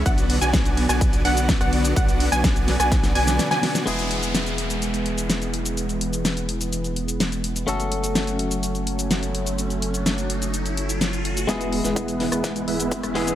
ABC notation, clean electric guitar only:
X:1
M:4/4
L:1/8
Q:1/4=126
K:Emix
V:1 name="Clean electric guitar"
z8 | z8 | [G,B,EG]8- | [G,B,EG]8 |
[A,CFA]8- | [A,CFA]8 | [G,B,EG]6- [G,B,EG] [G,B,EG] |]